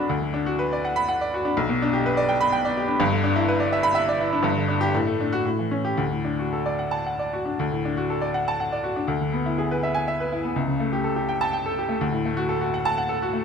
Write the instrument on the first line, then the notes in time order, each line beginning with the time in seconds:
grand piano
Already playing: B1 D4 F#4 D5 F#5 B5
0.09 D2
0.22 D3
0.34 D4
0.46 F#4
0.59 B4
0.73 D5
0.85 F#5
0.96 B5
1.09 F#5
1.21 D5
1.34 F#4
1.45 D4
1.57 B1
1.69 B2
1.82 D4
1.93 G4
2.06 B4
2.17 D5
2.29 G5
2.41 B5
2.52 G5
2.65 D5
2.77 G4
2.88 D4
3.00 G1 G2
3.12 D3
3.24 D4
3.36 E4
3.48 B4
3.60 D5
3.72 E5
3.83 B5
3.95 E5
4.09 D5
4.20 E4
4.33 D4
4.43 G1 G2
4.57 D3
4.68 D4
4.81 G4
4.94 A2
5.07 A3
5.20 D4
5.33 F#4
5.45 A2
5.59 E3
5.71 C#4
5.85 G4
5.97 D2
6.11 A2
6.25 D4
6.39 F#4
6.53 A4
6.66 D5
6.79 F#5
6.91 A5
7.06 F#5
7.19 D5
7.33 F#4
7.45 D4
7.59 D2
7.72 A2
7.85 D4
7.97 F#4
8.10 A4
8.21 D5
8.34 F#5
8.48 A5
8.60 F#5
8.72 D5
8.84 F#4
8.96 D4
9.08 D2
9.21 D3
9.33 B3
9.46 E4
9.58 G#4
9.71 B4
9.83 E5
9.95 G#5
10.08 E5
10.20 B4
10.32 E4
10.44 B3
10.56 C#2
10.68 C#3
10.80 A3
10.93 G4
11.04 A4
11.16 G4
11.29 G5
11.41 A5
11.53 G5
11.66 A4
11.79 G4
11.89 A3
12.01 D2
12.12 A2
12.25 A3
12.37 F#4
12.49 A4
12.61 F#4
12.74 F#5
12.85 A5
12.98 F#5
13.09 A4
13.22 F#4
13.33 A3